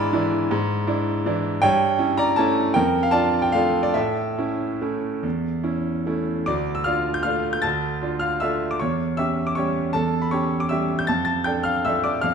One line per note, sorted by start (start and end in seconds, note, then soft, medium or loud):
0.00 0.51 G#2 loud
0.00 0.13 D4 medium
0.00 0.14 E4 medium
0.00 1.59 D5 loud
0.00 0.53 G#5 loud
0.00 1.63 B5 loud
0.00 0.53 D6 loud
0.00 0.53 E6 loud
0.13 0.47 E3 medium
0.13 0.47 D4 medium
0.13 0.47 E4 medium
0.51 0.87 G#2 loud
0.87 1.22 D4 medium
0.87 1.22 E4 medium
1.26 1.60 E3 medium
1.26 1.60 D4 medium
1.26 1.60 E4 medium
1.62 1.99 G2 medium
1.62 2.15 C#5 medium
1.62 2.19 G5 loud
1.99 2.34 C#4 medium
1.99 2.35 E4 medium
2.18 2.37 D5 medium
2.18 2.38 A#5 loud
2.36 2.73 A3 medium
2.36 2.73 C#4 medium
2.36 2.73 E4 medium
2.36 2.73 C#5 medium
2.36 2.75 A5 loud
2.74 3.13 F2 medium
2.74 3.02 A#4 medium
2.74 3.03 G5 loud
3.03 3.13 F5 medium
3.11 3.50 D4 medium
3.11 3.50 F4 medium
3.11 3.41 D5 medium
3.11 3.43 A5 loud
3.42 3.53 G5 medium
3.52 3.92 A3 medium
3.52 3.92 D4 medium
3.52 3.92 F4 medium
3.52 3.83 A4 medium
3.52 3.85 F5 medium
3.83 3.95 D5 medium
3.94 4.37 A2 medium
3.94 6.02 A4 medium
3.94 6.05 E5 medium
4.38 4.78 C#4 medium
4.38 4.78 E4 medium
4.82 5.20 A3 medium
4.82 5.20 C#4 medium
4.82 5.20 E4 medium
5.23 5.63 E2 medium
5.64 6.02 C#4 soft
5.64 6.02 E4 medium
6.06 6.43 A3 soft
6.06 6.43 C#4 soft
6.06 6.43 E4 medium
6.46 6.85 D2 medium
6.46 6.74 D5 medium
6.46 6.76 D6 medium
6.75 6.85 E6 medium
6.84 7.22 D4 soft
6.84 7.22 F4 medium
6.84 7.13 F5 medium
6.84 7.15 F6 medium
7.14 7.25 G6 medium
7.23 7.59 A3 soft
7.23 7.60 D4 medium
7.23 7.60 F4 medium
7.23 7.52 F5 medium
7.23 7.53 F6 medium
7.53 7.63 G6 medium
7.62 8.01 D2 medium
7.62 8.17 A5 medium
7.62 8.21 A6 loud
8.02 8.37 D4 medium
8.02 8.38 F4 medium
8.20 8.40 F5 medium
8.20 8.40 F6 medium
8.40 8.76 A3 soft
8.40 8.76 D4 soft
8.40 8.77 F4 soft
8.40 8.68 E5 medium
8.40 8.70 E6 medium
8.71 8.80 D6 medium
8.80 9.18 E2 medium
8.80 9.16 C#5 medium
8.80 9.17 C#6 medium
9.17 9.53 C#4 medium
9.17 9.54 G4 medium
9.17 9.45 E5 medium
9.17 9.47 E6 medium
9.47 9.56 D6 medium
9.55 9.91 G3 soft
9.55 9.91 C#4 soft
9.55 9.91 G4 medium
9.55 9.92 C#5 medium
9.55 9.93 C#6 medium
9.93 10.31 E2 medium
9.93 10.20 A4 medium
9.93 10.21 A5 medium
10.22 10.31 B5 medium
10.31 10.67 C#4 soft
10.31 10.68 G4 medium
10.31 10.59 C#5 medium
10.31 10.61 C#6 medium
10.60 10.70 D6 medium
10.69 11.05 G3 soft
10.69 11.05 C#4 soft
10.69 11.05 G4 medium
10.69 10.97 E5 medium
10.69 10.99 E6 medium
10.99 11.08 G6 medium
11.07 11.45 F2 medium
11.07 11.25 A5 medium
11.07 11.23 A6 medium
11.25 11.44 A5 medium
11.25 11.45 A6 medium
11.44 11.81 D4 medium
11.44 11.82 A4 medium
11.44 11.64 G5 medium
11.44 11.65 G6 medium
11.63 11.83 F5 medium
11.63 11.84 F6 medium
11.85 12.20 F3 soft
11.85 12.20 D4 soft
11.85 12.20 A4 medium
11.85 12.03 E5 medium
11.85 12.04 E6 medium
12.04 12.22 D5 medium
12.04 12.23 D6 medium
12.21 12.34 F2 medium
12.21 12.34 F5 medium
12.21 12.34 F6 medium